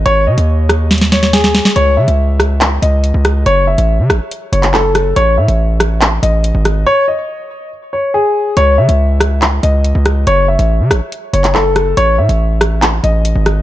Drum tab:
HH |x--------x--------x-----x-x-x-x--x--------x-----|x--------x--------x-----x-----x-----x-----x-----|x--------x--------x-----x-----x--x--------x-----|x--------x--------x-----x-----x-----x-----x-----|
CP |------------------------------------------------|------------------------x-----------------------|---------------------------------x--x-----------|------------------------x-----------------------|
SD |------------------r-----o--o--o--o--o--o--o--o--|------------------r-----------------------r-----|------------------r-----------------------r-----|------------------r-----------------------r-----|

HH |------------------------------------------------|x--------x--------x-----x-----x-----x-----x-----|x--------x--------x-----x-----x--x--------x-----|x--------x--------x-----x-----x-----x-----x-----|
CP |------------------------------------------------|------------------------x-----------------------|---------------------------------x--x-----------|------------------------x-----------------------|
SD |------------------------------------------------|------------------r-----------------------r-----|------------------r-----------------------r-----|------------------r-----------------------r-----|